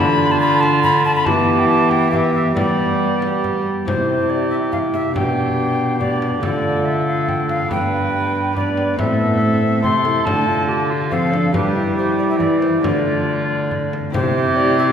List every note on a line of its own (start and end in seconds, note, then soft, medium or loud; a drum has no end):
0.00 1.28 D3 medium
0.00 0.98 D4 medium
0.00 1.26 D4 medium
0.00 1.27 F4 medium
0.00 1.27 A4 medium
0.00 0.33 B5 loud
0.31 0.40 A5 loud
0.40 0.62 B5 loud
0.61 0.82 A5 loud
0.61 frame drum medium
0.83 1.04 B5 loud
0.83 frame drum medium
1.05 1.15 A5 loud
1.16 1.27 B5 loud
1.24 2.55 E3 medium
1.24 2.58 E3 medium
1.24 2.53 B3 medium
1.24 2.08 B3 medium
1.24 2.55 G4 medium
1.24 2.12 G4 medium
1.24 1.60 A5 medium
1.24 frame drum medium
1.59 1.68 G5 medium
1.69 1.91 A5 medium
1.90 2.11 G5 medium
1.90 frame drum medium
2.11 2.55 B3 medium
2.11 2.55 G4 medium
2.11 2.17 F5 medium
2.11 frame drum soft
2.16 2.33 E5 medium
2.33 2.54 E5 medium
2.54 3.64 G3 medium
2.54 6.45 G3 medium
2.54 3.87 B3 medium
2.54 3.62 B3 medium
2.54 3.64 G4 medium
2.54 3.85 G4 medium
2.54 3.41 D5 medium
2.54 frame drum medium
3.22 frame drum medium
3.44 frame drum medium
3.85 5.11 C3 medium
3.85 5.17 C3 medium
3.85 5.16 E4 soft
3.85 5.17 E4 medium
3.85 5.14 G4 soft
3.85 5.11 G4 medium
3.85 4.31 C5 medium
3.85 frame drum medium
4.30 4.49 D5 medium
4.50 4.56 E5 medium
4.72 4.78 F5 medium
4.72 frame drum soft
4.94 5.15 E5 medium
4.94 frame drum soft
5.14 6.40 B2 medium
5.14 6.45 B2 medium
5.14 5.98 D4 soft
5.14 6.00 D4 medium
5.14 5.99 G4 soft
5.14 5.99 G4 medium
5.14 5.99 G5 medium
5.14 frame drum medium
5.99 6.40 D4 soft
5.99 6.42 D4 medium
5.99 6.44 G4 soft
5.99 6.46 G4 medium
5.99 6.42 D5 medium
5.99 frame drum soft
6.22 frame drum soft
6.41 7.68 D3 medium
6.41 7.73 D3 soft
6.41 7.71 A3 soft
6.41 7.67 D4 soft
6.41 7.68 F4 medium
6.41 7.72 F4 soft
6.41 7.71 A4 medium
6.41 6.87 D5 medium
6.41 frame drum medium
6.85 7.07 E5 medium
7.07 7.30 F5 medium
7.28 7.48 G5 medium
7.28 frame drum medium
7.49 7.70 F5 medium
7.49 frame drum soft
7.67 8.96 G2 medium
7.67 9.01 G2 soft
7.67 8.51 B3 soft
7.67 8.52 D4 soft
7.67 8.54 D4 medium
7.67 8.53 G4 soft
7.67 8.55 B4 medium
7.67 frame drum medium
7.72 8.55 G5 medium
8.52 8.98 B3 soft
8.52 8.99 D4 soft
8.52 9.00 G4 soft
8.52 8.98 D5 medium
8.56 8.98 D4 medium
8.56 8.98 B4 medium
8.56 frame drum soft
8.77 frame drum soft
8.94 10.28 A2 soft
8.94 9.78 A3 soft
8.94 9.79 C4 soft
8.94 9.81 C5 soft
8.98 9.86 A2 medium
8.98 9.22 C4 medium
8.98 9.80 A4 medium
8.98 9.82 E5 medium
8.98 frame drum medium
9.20 9.40 B3 medium
9.41 9.62 C4 medium
9.63 9.86 C4 medium
9.79 10.28 C3 medium
9.79 11.54 A3 soft
9.79 10.26 C4 soft
9.79 10.69 A4 medium
9.79 10.27 C5 soft
9.83 10.26 C3 medium
9.83 10.08 A3 medium
9.83 10.27 C6 medium
9.83 frame drum soft
10.05 10.26 E4 medium
10.05 frame drum medium
10.25 11.13 D3 medium
10.25 11.56 D3 soft
10.25 11.08 D4 soft
10.25 10.49 D4 medium
10.25 11.09 A4 medium
10.25 10.83 A5 loud
10.25 frame drum medium
10.47 11.11 F4 medium
10.68 10.91 G4 medium
10.90 11.13 F4 medium
11.09 11.54 F3 medium
11.09 11.56 F3 medium
11.09 11.35 C4 medium
11.09 11.51 D4 soft
11.09 11.55 A4 soft
11.09 11.55 A4 medium
11.09 11.51 F5 medium
11.09 frame drum soft
11.33 11.54 D4 medium
11.33 frame drum soft
11.52 12.41 G3 medium
11.52 12.85 G3 medium
11.52 12.81 D4 soft
11.52 11.78 D4 medium
11.52 12.85 G4 soft
11.52 11.97 G4 medium
11.52 11.96 B4 medium
11.52 frame drum medium
11.76 12.86 E4 medium
11.97 12.86 G4 medium
11.97 12.18 C5 medium
12.18 12.23 D5 medium
12.30 12.38 E5 medium
12.38 12.83 E3 medium
12.38 12.86 E3 medium
12.38 12.62 D5 medium
12.38 frame drum soft
12.60 12.82 C5 medium
12.60 frame drum soft
12.81 13.91 D3 medium
12.81 14.16 D3 medium
12.81 14.14 A3 soft
12.81 14.15 D4 soft
12.81 13.93 D4 medium
12.81 14.15 F4 soft
12.81 13.94 F4 medium
12.81 13.90 D5 medium
12.81 frame drum medium
13.71 frame drum soft
13.93 frame drum soft
14.10 14.92 C3 medium
14.10 14.92 C4 medium
14.10 14.92 E4 medium
14.10 14.92 G4 medium
14.10 14.58 C5 loud
14.14 14.92 C3 medium
14.14 14.92 G4 medium
14.14 frame drum medium
14.56 14.78 D5 loud
14.78 14.84 E5 loud